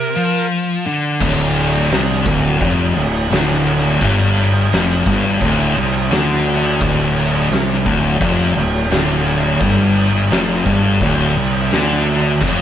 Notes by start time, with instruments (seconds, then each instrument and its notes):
Already playing: distorted electric guitar C3, lead electric guitar A#4
0.15 distorted electric guitar F3
0.86 distorted electric guitar D3
1.21 fingered electric bass D1, distorted electric guitar D2, kick, crash
1.55 crash
1.91 fingered electric bass C2, distorted electric guitar C3, snare, crash
2.26 fingered electric bass D1, distorted electric guitar D2, kick, crash
2.61 fingered electric bass F1, distorted electric guitar F2, kick, crash
2.96 fingered electric bass D1, distorted electric guitar D2, crash
3.31 fingered electric bass D1, distorted electric guitar D2, snare, crash
3.66 crash
4.01 fingered electric bass G1, distorted electric guitar G2, kick, crash
4.37 crash
4.72 fingered electric bass F1, distorted electric guitar F2, snare, crash
5.06 fingered electric bass G1, distorted electric guitar G2, kick, crash
5.41 fingered electric bass D1, distorted electric guitar D2, kick, crash
5.76 fingered electric bass C2, distorted electric guitar C3, crash
5.96 snare
6.11 fingered electric bass D2, distorted electric guitar D3, snare, crash
6.46 crash
6.80 fingered electric bass D1, distorted electric guitar D2, kick, crash
7.16 crash
7.50 fingered electric bass C2, distorted electric guitar C3, snare, crash
7.85 fingered electric bass D1, distorted electric guitar D2, kick, crash
8.19 fingered electric bass F1, distorted electric guitar F2, kick, crash
8.56 fingered electric bass D1, distorted electric guitar D2, crash
8.75 snare
8.91 fingered electric bass D1, distorted electric guitar D2, snare, crash
9.26 crash
9.61 fingered electric bass G1, distorted electric guitar G2, kick, crash
9.96 crash
10.30 fingered electric bass F1, distorted electric guitar F2, snare, crash
10.66 fingered electric bass G1, distorted electric guitar G2, kick, crash
11.01 fingered electric bass D1, distorted electric guitar D2, kick, crash
11.36 fingered electric bass C2, distorted electric guitar C3, crash
11.71 fingered electric bass D2, distorted electric guitar D3, snare, crash
12.06 crash
12.41 fingered electric bass F1, distorted electric guitar F2, kick, crash